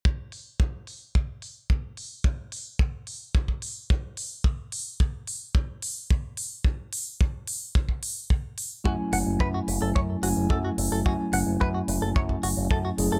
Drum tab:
HH |--o---o---o---o-|--o---o---o---o-|--o---o---o---o-|--o---o---o---o-|
BD |o---o---o---o---|o---o---oo--o---|o---o---o---o---|o---o---oo--o---|

HH |--o---o---o---o-|--o---o---o---o-|
BD |o---o---o---o---|o---o---oo--o---|